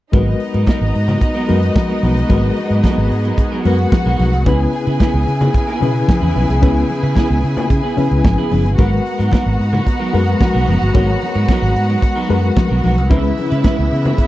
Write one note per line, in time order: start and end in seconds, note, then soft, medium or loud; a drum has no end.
0.12 0.33 G#1 medium
0.12 0.34 F#3 medium
0.12 0.88 G#3 medium
0.12 4.43 G#3 medium
0.12 0.27 B3 medium
0.12 4.43 B3 medium
0.12 3.61 D#4 medium
0.12 0.27 D#4 medium
0.12 0.89 F#4 medium
0.12 4.43 F#4 medium
0.12 0.89 A#4 medium
0.12 0.26 A#4 medium
0.12 0.89 B4 medium
0.12 3.61 D#5 medium
0.12 2.28 A#5 medium
0.12 kick loud
0.12 closed hi-hat medium
0.12 muted conga medium
0.27 muted clean electric guitar stroke soft
0.40 muted clean electric guitar stroke soft
0.40 open hi-hat medium
0.53 0.64 G#2 medium
0.53 0.65 F#3 soft
0.53 0.66 B3 soft
0.53 0.66 D#4 medium
0.53 0.67 A#4 medium
0.53 closed hi-hat soft
0.67 0.88 F#3 medium
0.67 0.80 B3 medium
0.67 0.80 D#4 medium
0.67 0.79 A#4 medium
0.67 kick loud
0.67 snare loud
0.67 closed hi-hat medium
0.67 high conga medium
0.80 0.91 G#1 medium
0.80 muted clean electric guitar stroke soft
0.94 1.15 G#2 medium
0.94 muted clean electric guitar stroke soft
0.94 open hi-hat medium
1.08 1.20 F#3 soft
1.08 1.21 B3 soft
1.08 1.21 D#4 medium
1.08 1.21 A#4 soft
1.08 closed hi-hat medium
1.08 low conga medium
1.21 muted clean electric guitar stroke soft
1.21 kick medium
1.21 closed hi-hat medium
1.35 1.47 F#3 medium
1.35 1.48 B3 medium
1.35 1.48 D#4 medium
1.35 1.48 A#4 medium
1.47 1.69 F#2 medium
1.47 1.65 F#3 medium
1.47 2.05 G#3 medium
1.47 1.61 B3 medium
1.47 1.61 D#4 medium
1.47 2.05 F#4 medium
1.47 2.05 A#4 medium
1.47 1.60 A#4 medium
1.47 2.05 B4 medium
1.47 open hi-hat medium
1.47 muted conga soft
1.62 muted clean electric guitar stroke soft
1.62 closed hi-hat soft
1.75 muted clean electric guitar stroke soft
1.75 kick loud
1.75 snare loud
1.75 closed hi-hat soft
1.75 high conga medium
1.88 2.01 F#3 medium
1.88 2.02 B3 medium
1.88 2.02 D#4 medium
1.88 2.03 A#4 medium
2.02 2.23 B1 medium
2.02 2.19 F#3 medium
2.02 2.16 B3 soft
2.02 2.16 D#4 soft
2.02 2.15 A#4 medium
2.02 open hi-hat medium
2.02 high conga medium
2.16 muted clean electric guitar stroke soft
2.16 closed hi-hat soft
2.29 2.50 G#1 medium
2.29 2.50 F#3 medium
2.29 3.05 G#3 medium
2.29 2.43 B3 medium
2.29 2.43 D#4 medium
2.29 3.05 F#4 medium
2.29 4.45 G#4 medium
2.29 3.05 A#4 medium
2.29 2.42 A#4 medium
2.29 3.05 B4 medium
2.29 kick loud
2.29 closed hi-hat medium
2.29 muted conga medium
2.43 muted clean electric guitar stroke soft
2.56 muted clean electric guitar stroke soft
2.56 open hi-hat medium
2.56 muted conga soft
2.70 2.80 G#2 medium
2.70 2.82 F#3 soft
2.70 2.83 B3 medium
2.70 2.83 D#4 medium
2.70 2.84 A#4 soft
2.70 closed hi-hat medium
2.83 3.04 F#3 medium
2.83 2.97 B3 medium
2.83 2.97 D#4 medium
2.83 2.96 A#4 medium
2.83 kick loud
2.83 snare loud
2.83 closed hi-hat medium
2.83 high conga medium
2.97 3.07 G#1 medium
2.97 muted clean electric guitar stroke soft
3.11 3.31 G#2 medium
3.11 muted clean electric guitar stroke soft
3.11 open hi-hat medium
3.24 3.37 F#3 medium
3.24 3.38 B3 soft
3.24 3.38 D#4 soft
3.24 3.39 A#4 medium
3.24 closed hi-hat medium
3.38 muted clean electric guitar stroke soft
3.38 kick loud
3.38 closed hi-hat medium
3.52 3.64 F#3 medium
3.52 3.64 B3 medium
3.52 3.65 D#4 medium
3.52 3.65 A#4 medium
3.65 3.85 F#2 medium
3.65 3.81 F#3 medium
3.65 4.21 G#3 medium
3.65 3.79 B3 medium
3.65 3.78 D#4 medium
3.65 4.22 F#4 medium
3.65 4.45 F#4 medium
3.65 4.22 A#4 medium
3.65 3.78 A#4 medium
3.65 4.22 B4 medium
3.65 4.45 F#5 medium
3.65 open hi-hat medium
3.65 muted conga soft
3.78 muted clean electric guitar stroke soft
3.78 closed hi-hat soft
3.92 muted clean electric guitar stroke soft
3.92 kick loud
3.92 snare loud
3.92 closed hi-hat soft
3.92 high conga medium
4.06 4.16 B1 medium
4.06 4.18 F#3 medium
4.06 4.19 B3 medium
4.06 4.19 D#4 medium
4.06 4.20 A#4 medium
4.19 4.33 B1 medium
4.19 4.35 F#3 medium
4.19 4.33 B3 medium
4.19 4.32 D#4 medium
4.19 4.32 A#4 medium
4.19 snare soft
4.19 open hi-hat medium
4.19 high conga medium
4.33 4.46 C2 medium
4.33 muted clean electric guitar stroke soft
4.33 closed hi-hat medium
4.46 4.66 C#2 loud
4.46 5.21 C#3 medium
4.46 8.74 C#3 medium
4.46 8.74 B3 medium
4.46 4.67 B3 medium
4.46 5.22 C#4 medium
4.46 8.74 E4 medium
4.46 5.22 E4 medium
4.46 4.61 E4 medium
4.46 8.75 G#4 medium
4.46 4.60 G#4 medium
4.46 5.22 B4 medium
4.46 4.60 B4 medium
4.46 8.75 G#5 medium
4.46 kick loud
4.46 closed hi-hat medium
4.46 muted conga medium
4.61 muted clean electric guitar stroke soft
4.73 muted clean electric guitar stroke soft
4.73 open hi-hat medium
4.87 4.97 C#3 loud
4.87 4.99 B3 soft
4.87 5.00 E4 medium
4.87 5.01 G#4 medium
4.87 5.01 B4 medium
4.87 closed hi-hat soft
5.00 5.21 B3 medium
5.00 5.14 E4 medium
5.00 5.13 G#4 medium
5.00 5.13 B4 medium
5.00 kick medium
5.00 snare loud
5.00 closed hi-hat medium
5.00 high conga medium
5.14 5.24 C#2 medium
5.14 muted clean electric guitar stroke soft
5.27 5.47 C#3 medium
5.27 muted clean electric guitar stroke soft
5.27 open hi-hat medium
5.41 5.53 B3 soft
5.41 5.54 E4 soft
5.41 5.54 G#4 medium
5.41 5.55 B4 soft
5.41 closed hi-hat medium
5.41 low conga medium
5.54 muted clean electric guitar stroke soft
5.54 kick loud
5.54 closed hi-hat medium
5.67 5.80 B3 medium
5.67 5.81 E4 medium
5.67 5.81 G#4 medium
5.67 5.82 B4 medium
5.80 6.01 B2 medium
5.80 6.37 C#3 medium
5.80 5.97 B3 medium
5.80 6.38 C#4 medium
5.80 6.38 E4 medium
5.80 5.95 E4 medium
5.80 5.94 G#4 medium
5.80 6.38 B4 medium
5.80 5.94 B4 medium
5.80 open hi-hat medium
5.80 muted conga soft
5.95 muted clean electric guitar stroke soft
5.95 closed hi-hat soft
6.08 muted clean electric guitar stroke soft
6.08 kick loud
6.08 snare loud
6.08 closed hi-hat medium
6.08 high conga medium
6.22 6.32 E2 medium
6.22 6.34 B3 medium
6.22 6.34 E4 medium
6.22 6.35 G#4 medium
6.22 6.35 B4 medium
6.35 6.45 B1 medium
6.35 6.51 B3 medium
6.35 6.49 E4 medium
6.35 6.48 G#4 medium
6.35 6.48 B4 medium
6.35 snare soft
6.35 open hi-hat medium
6.35 high conga medium
6.49 6.63 C2 medium
6.49 muted clean electric guitar stroke soft
6.49 closed hi-hat medium
6.61 6.82 C#2 loud
6.61 7.37 C#3 medium
6.61 6.83 B3 medium
6.61 7.37 C#4 medium
6.61 7.37 E4 medium
6.61 6.76 E4 medium
6.61 6.75 G#4 medium
6.61 7.38 B4 medium
6.61 6.74 B4 medium
6.61 kick loud
6.61 closed hi-hat medium
6.61 muted conga medium
6.76 muted clean electric guitar stroke soft
6.89 muted clean electric guitar stroke soft
6.89 open hi-hat medium
6.89 muted conga soft
7.03 7.13 C#3 medium
7.03 7.15 B3 medium
7.03 7.16 E4 medium
7.03 7.16 G#4 medium
7.03 7.16 B4 medium
7.03 closed hi-hat medium
7.15 7.37 B3 medium
7.15 7.30 E4 medium
7.15 7.29 G#4 medium
7.15 7.28 B4 medium
7.15 kick medium
7.15 snare loud
7.15 closed hi-hat medium
7.15 high conga medium
7.30 7.40 C#2 medium
7.30 muted clean electric guitar stroke soft
7.43 7.63 C#3 medium
7.43 muted clean electric guitar stroke soft
7.43 open hi-hat medium
7.56 7.69 B3 medium
7.56 7.69 E4 soft
7.56 7.69 G#4 medium
7.56 7.70 B4 medium
7.56 closed hi-hat medium
7.56 low conga medium
7.70 7.80 C#3 medium
7.70 muted clean electric guitar stroke soft
7.70 kick loud
7.70 closed hi-hat medium
7.83 7.96 B3 medium
7.83 7.96 E4 medium
7.83 7.97 G#4 medium
7.83 7.97 B4 medium
7.97 8.54 C#3 medium
7.97 8.07 C#3 medium
7.97 8.13 B3 medium
7.97 8.54 C#4 medium
7.97 8.11 E4 medium
7.97 8.54 E4 medium
7.97 8.10 G#4 medium
7.97 8.54 B4 medium
7.97 8.10 B4 medium
7.97 open hi-hat medium
7.97 muted conga medium
8.11 8.21 C#2 medium
8.11 muted clean electric guitar stroke soft
8.11 closed hi-hat soft
8.24 8.34 G#1 medium
8.24 muted clean electric guitar stroke soft
8.24 kick loud
8.24 snare loud
8.24 closed hi-hat medium
8.24 high conga medium
8.38 8.50 B3 medium
8.38 8.51 E4 medium
8.38 8.51 G#4 medium
8.38 8.52 B4 medium
8.51 8.65 F#1 medium
8.51 8.67 B3 soft
8.51 8.65 E4 medium
8.51 8.64 G#4 medium
8.51 8.64 B4 medium
8.51 open hi-hat medium
8.51 high conga medium
8.65 8.75 G1 medium
8.65 muted clean electric guitar stroke soft
8.65 closed hi-hat soft
8.78 8.98 G#1 loud
8.78 8.99 F#3 medium
8.78 9.53 G#3 medium
8.78 13.07 G#3 medium
8.78 8.92 B3 medium
8.78 13.07 B3 medium
8.78 8.91 D#4 medium
8.78 9.54 F#4 medium
8.78 13.07 F#4 medium
8.78 9.54 A#4 medium
8.78 8.91 A#4 medium
8.78 9.54 B4 medium
8.78 13.07 F#5 medium
8.78 13.07 A#5 medium
8.78 kick loud
8.78 closed hi-hat medium
8.78 muted conga medium
8.92 muted clean electric guitar stroke soft
9.05 muted clean electric guitar stroke soft
9.05 open hi-hat medium
9.18 9.29 G#2 medium
9.18 9.31 F#3 soft
9.18 9.31 B3 soft
9.18 9.32 D#4 medium
9.18 9.32 A#4 medium
9.18 closed hi-hat medium
9.32 9.53 F#3 medium
9.32 9.45 B3 medium
9.32 9.45 D#4 medium
9.32 9.44 A#4 medium
9.32 kick medium
9.32 snare loud
9.32 closed hi-hat medium
9.32 high conga medium
9.45 9.56 G#1 medium
9.45 muted clean electric guitar stroke soft
9.59 9.79 G#2 medium
9.59 muted clean electric guitar stroke soft
9.59 open hi-hat medium
9.73 9.85 F#3 medium
9.73 9.86 B3 medium
9.73 9.86 D#4 medium
9.73 9.86 A#4 medium
9.73 closed hi-hat medium
9.73 low conga medium
9.86 muted clean electric guitar stroke soft
9.86 kick medium
9.86 closed hi-hat medium
9.99 10.12 F#3 medium
9.99 10.13 B3 medium
9.99 10.13 D#4 medium
9.99 10.14 A#4 medium
10.13 10.33 F#2 medium
10.13 10.30 F#3 medium
10.13 10.70 G#3 medium
10.13 10.27 B3 medium
10.13 10.26 D#4 medium
10.13 10.70 F#4 medium
10.13 10.70 A#4 medium
10.13 10.26 A#4 medium
10.13 10.70 B4 medium
10.13 open hi-hat medium
10.13 muted conga soft
10.27 muted clean electric guitar stroke soft
10.27 closed hi-hat soft
10.40 muted clean electric guitar stroke soft
10.40 kick loud
10.40 snare loud
10.40 closed hi-hat medium
10.40 high conga medium
10.53 10.64 B1 medium
10.53 10.66 F#3 medium
10.53 10.67 B3 medium
10.53 10.67 D#4 medium
10.53 10.68 A#4 medium
10.67 10.78 F#1 loud
10.67 10.84 F#3 medium
10.67 10.81 B3 medium
10.67 10.81 D#4 medium
10.67 10.80 A#4 medium
10.67 open hi-hat medium
10.67 high conga medium
10.81 10.91 G1 medium
10.81 muted clean electric guitar stroke soft
10.81 closed hi-hat soft
10.94 11.14 G#1 loud
10.94 11.15 F#3 medium
10.94 11.69 G#3 medium
10.94 11.08 B3 medium
10.94 11.08 D#4 medium
10.94 11.70 F#4 medium
10.94 11.70 A#4 medium
10.94 11.07 A#4 medium
10.94 11.70 C#5 medium
10.94 kick loud
10.94 closed hi-hat medium
10.94 muted conga medium
11.08 muted clean electric guitar stroke soft
11.21 muted clean electric guitar stroke soft
11.21 open hi-hat medium
11.21 muted conga soft
11.35 11.45 G#2 loud
11.35 11.48 F#3 soft
11.35 11.49 B3 medium
11.35 11.49 D#4 soft
11.35 11.49 A#4 medium
11.35 closed hi-hat soft
11.48 11.69 F#3 medium
11.48 11.63 B3 medium
11.48 11.63 D#4 medium
11.48 11.62 A#4 medium
11.48 kick loud
11.48 snare loud
11.48 closed hi-hat medium
11.48 high conga medium
11.62 11.72 G#1 medium
11.62 muted clean electric guitar stroke soft
11.76 11.95 G#2 medium
11.76 muted clean electric guitar stroke soft
11.76 open hi-hat medium
11.89 12.01 F#3 soft
11.89 12.02 B3 medium
11.89 12.02 D#4 medium
11.89 12.02 A#4 medium
11.89 closed hi-hat medium
12.02 muted clean electric guitar stroke soft
12.02 kick medium
12.02 closed hi-hat medium
12.16 12.28 F#3 medium
12.16 12.29 B3 medium
12.16 12.29 D#4 medium
12.16 12.30 A#4 medium
12.29 12.49 F#2 medium
12.29 12.45 F#3 soft
12.29 12.86 G#3 medium
12.29 12.43 B3 medium
12.29 12.42 D#4 medium
12.29 12.86 F#4 medium
12.29 12.86 A#4 medium
12.29 12.41 A#4 medium
12.29 12.86 B4 medium
12.29 open hi-hat medium
12.29 muted conga soft
12.42 muted clean electric guitar stroke soft
12.42 closed hi-hat soft
12.56 kick loud
12.56 snare loud
12.56 closed hi-hat medium
12.56 high conga medium
12.69 12.80 B1 medium
12.69 12.82 F#3 medium
12.69 12.82 B3 medium
12.69 12.83 D#4 medium
12.69 12.84 A#4 medium
12.83 12.98 B1 medium
12.83 12.99 F#3 medium
12.83 12.97 B3 medium
12.83 12.96 D#4 medium
12.83 12.96 A#4 medium
12.83 snare soft
12.83 open hi-hat medium
12.83 high conga medium
12.97 13.11 C2 medium
12.97 muted clean electric guitar stroke soft
12.97 closed hi-hat medium
13.10 13.30 C#2 loud
13.10 13.85 C#3 medium
13.10 14.27 C#3 medium
13.10 14.27 E3 medium
13.10 13.31 G#3 medium
13.10 14.27 B3 medium
13.10 13.85 C#4 medium
13.10 13.24 C#4 medium
13.10 13.86 E4 medium
13.10 13.23 E4 medium
13.10 14.27 E4 medium
13.10 13.86 B4 medium
13.10 13.22 B4 medium
13.10 14.27 E5 medium
13.10 kick loud
13.10 closed hi-hat medium
13.10 muted conga medium
13.23 muted clean electric guitar stroke soft
13.37 muted clean electric guitar stroke soft
13.37 open hi-hat medium
13.37 muted conga soft
13.50 13.61 C#3 medium
13.50 13.63 G#3 soft
13.50 13.64 C#4 medium
13.50 13.64 E4 medium
13.50 13.65 B4 medium
13.50 closed hi-hat soft
13.64 13.85 G#3 medium
13.64 13.78 C#4 medium
13.64 13.77 E4 medium
13.64 13.77 B4 medium
13.64 kick loud
13.64 snare loud
13.64 closed hi-hat medium
13.64 high conga medium
13.78 13.88 C#2 medium
13.78 muted clean electric guitar stroke soft
13.92 14.11 C#3 medium
13.92 muted clean electric guitar stroke soft
13.92 open hi-hat medium
14.05 14.17 G#3 medium
14.05 14.17 C#4 medium
14.05 14.18 E4 medium
14.05 14.18 B4 medium
14.05 closed hi-hat medium
14.05 low conga medium
14.18 muted clean electric guitar stroke soft
14.18 kick medium
14.18 closed hi-hat medium